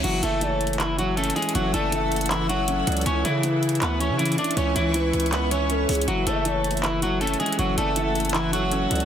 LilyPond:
<<
  \new Staff \with { instrumentName = "Ambient pad" } { \time 4/4 \key fis \minor \tempo 4 = 159 <a' fis'' e'''>1~ | <a' fis'' e'''>1 | <b' e'' cis'''>1~ | <b' e'' cis'''>1 |
<a' fis'' e'''>1~ | <a' fis'' e'''>1 | }
  \new Staff \with { instrumentName = "Soft synth lead" } { \time 4/4 \key fis \minor r8 e''8 cis''4 r2 | r8 d''8 e''4 r4. d''8 | r8 cis''8 b'4 r2 | r8 cis''8 b'2 a'8 gis'8 |
r8 e''8 cis''4 r2 | r8 d''8 e''4 r4. d''8 | }
  \new Staff \with { instrumentName = "Clean electric guitar" } { \time 4/4 \key fis \minor <fis fis'>8 <a a'>4. <e e'>8 <fis fis'>8 <a a'>8 <gis gis'>8 | <fis fis'>8 <a a'>4. <e e'>8 <fis fis'>4. | <cis' cis''>8 <e e'>4. <b b'>8 <cis' cis''>8 <e e'>8 <d' d''>8 | <cis' cis''>8 <e e'>4. <b b'>8 <cis' cis''>4. |
<fis fis'>8 <a a'>4. <e e'>8 <fis fis'>8 <a a'>8 <gis gis'>8 | <fis fis'>8 <a a'>4. <e e'>8 <fis fis'>4. | }
  \new Staff \with { instrumentName = "Grand piano" } { \clef bass \time 4/4 \key fis \minor e8 e8 e4 e8 e8 cis'8 e8 | e8 e8 e4 e8 e8 cis'8 e8 | e8 e8 e4 e8 e8 cis'8 e8 | e8 e8 e4 e8 e8 cis'8 e8 |
e8 e8 e4 e8 e8 cis'8 e8 | e8 e8 e4 e8 e8 cis'8 e8 | }
  \new Staff \with { instrumentName = "808-style bass" } { \clef bass \time 4/4 \key fis \minor fis,,8 fis,,2. r8 | fis,,8 fis,,2. cis,8 | cis,8 cis4. d,8. cis8. r8 | cis,8 cis,4 cis,2 cis,8 |
fis,,8 fis,,2. r8 | fis,,8 fis,,2. cis,8 | }
  \new DrumStaff \with { instrumentName = "Drums" } \drummode { \time 4/4 <cymc hh>8 hh8 \tuplet 3/2 { hh16 r16 r16 hh16 hh16 hh16 } <hc hh>8 hh8 \tuplet 3/2 { hh16 hh16 hh16 hh16 hh16 hh16 } | hh8 hh8 hh8 hh32 hh32 hh32 hh32 <hc hh>8 hh8 hh8 hh32 hh32 hh32 hh32 | hh8 hh8 \tuplet 3/2 { hh16 r16 r16 hh16 hh16 hh16 } <hc hh>8 hh8 \tuplet 3/2 { hh16 hh16 hh16 hh16 hh16 hh16 } | hh8 hh8 \tuplet 3/2 { hh16 r16 r16 hh16 hh16 hh16 } <hc hh>8 hh8 \tuplet 3/2 { hh16 r16 r16 <hh hho>16 hh16 hh16 } |
hh8 hh8 \tuplet 3/2 { hh16 r16 r16 hh16 hh16 hh16 } <hc hh>8 hh8 \tuplet 3/2 { hh16 hh16 hh16 hh16 hh16 hh16 } | hh8 hh8 hh8 hh32 hh32 hh32 hh32 <hc hh>8 hh8 hh8 hh32 hh32 hh16 | }
>>